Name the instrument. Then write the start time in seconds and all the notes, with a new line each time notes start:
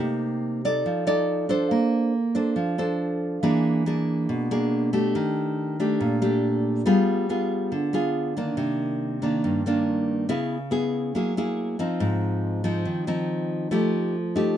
nylon-string guitar
Already playing: A#3 D#4 G4
0.00 C3
0.65 D#4 A4 D5
0.86 F3
1.07 D#4 A4 D5
1.49 D4 A4 C5
1.71 A#3
2.35 D4 A4 C5
2.56 F3
2.78 D4 A4 C5
3.43 E3 A#3 D4 G#4
3.86 A#3 D4 G#4
4.29 B2
4.51 A#3 D4 G#4
4.93 A3 D4 G4
5.15 D#3
5.80 A3 D4 G4
6.00 A#2
6.22 A3 D4 G4
6.86 G3 B3 F4 G#4
7.29 B3 F4 G#4
7.72 D3
7.93 B3 F4 G#4
8.37 D#3 A#3 D4
8.57 C3
9.22 D#3 A#3 D4
9.44 G2
9.66 D#3 A#3 D4
10.29 C#3 B3 E4 G#4
10.71 B3 E4 G#4
11.15 F#3 A#3 E4 G#4
11.37 A#3 E4 G#4
11.79 F3 C4 D#4
12.00 G#2
12.64 F3 C4 D#4
12.85 D#3
13.07 F3 C4 D#4
13.71 F3 A3 D#4 G4
14.36 A3 D#4 G4